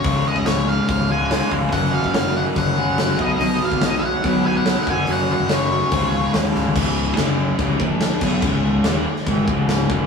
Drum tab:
CC |----------------|----------------|----------------|----------------|
HH |o---o---o---o---|o---o---o---o---|o---o---o---o---|o---o---o---o---|
SD |----o-------o---|----o-------o---|----o-------o---|----o-------o-o-|
FT |----------------|----------------|----------------|---------------o|
BD |o--o----o-----o-|o--o----o-----o-|---o----o-----o-|--------o-------|

CC |x---x---x---x-x-|x---x---x---x---|
HH |----------------|----------------|
SD |----o-------o---|----o--o----o---|
FT |----------------|----------------|
BD |o-------o-o---o-|o-------o-o---o-|